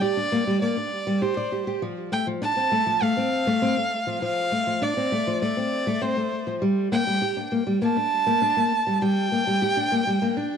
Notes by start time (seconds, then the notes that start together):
0.02 G4 D5
0.17 D4
0.32 A#3
0.47 G3
0.62 A#3 D5
0.77 D4
1.07 G3
1.22 G4 C5
1.37 D5
1.52 G4
1.67 G4
1.82 F3
2.12 A3 G5
2.27 F3
2.42 D4 A5
2.56 C4
2.72 A3
2.86 F3
3.02 A3 F5
3.17 C4
3.47 A3
3.62 C4
3.77 A3
4.07 F3
4.22 F3 F5
4.52 A3
4.67 F3
4.82 D4 D5
4.97 C4
5.12 A3
5.27 F3
5.42 A3 D5
5.57 C4
5.87 A3
6.02 C4 C5
6.17 A3
6.47 F3
6.62 G3
6.92 A#3 G5
7.07 G3
7.22 G4
7.37 D4
7.52 A#3
7.67 G3
7.82 A#3 A5
7.97 D4
8.27 A#3
8.42 D4
8.57 A#3
8.87 G3
9.02 G3 G5
9.32 A#3
9.47 G3
9.62 G4
9.77 D4
9.92 A#3
10.07 G3
10.22 A#3
10.37 D4